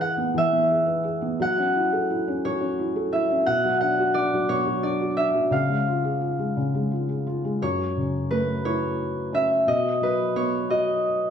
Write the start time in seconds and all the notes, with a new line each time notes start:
Already playing: E3 B3 B4 C#5
0.00 G#4 F#5
0.17 B3
0.34 E3 E5
0.52 B3
0.70 G#4
0.86 B4
1.04 G#4
1.22 B3
1.40 F#3 F#5
1.58 C#4
1.75 E4
1.93 A4
2.10 E4
2.28 C#4
2.45 F#3 C#5
2.61 C#4
2.79 E4
2.96 A4
3.13 E4 E5
3.31 C#4
3.46 B2 F#5
3.65 F#3
3.81 D4 F#5
3.99 F#4
4.14 D4 D5
4.33 F#3
4.49 B2 C#5
4.67 F#3
4.82 D4 D5
5.00 F#4
5.17 D4 E5
5.34 F#3
5.51 C#3 F5
5.69 G#3
5.87 F4
6.04 G#4
6.21 F4
6.39 G#3
6.57 C#3
6.74 G#3
6.91 F4
7.09 G#4
7.27 F4
7.44 G#3
7.62 F#2 C#5
7.97 C#3
8.31 A3 B4
8.64 E4 C#5
9.33 C#4 E5
9.67 B2 D#5
10.01 F#3 B4
10.36 B3 C#5
10.69 F#4 D#5